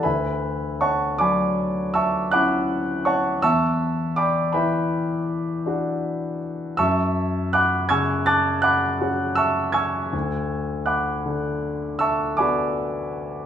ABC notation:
X:1
M:9/8
L:1/8
Q:3/8=54
K:Dlyd
V:1 name="Grand piano"
[Begb]2 [cfac'] [dgbd']2 [eac'e'] [fbd'f']2 [cfac'] | [eac'e']2 [d=gbd'] [Begb]4- [Begb] z | [eac'e']2 [fbd'f'] [gc'e'g'] [ad'f'a'] [fbd'f']2 [eac'e'] [gc'e'g']- | [gc'e'g']2 [fbd'f']3 [eac'e'] [dgbd']3 |]
V:2 name="Grand piano" clef=bass
D,,3 F,3 [CE]3 | E,,3 E,3 [DF]3 | F,,3 C,3 [CF]3 | D,,3 D,3 [B,F]3 |]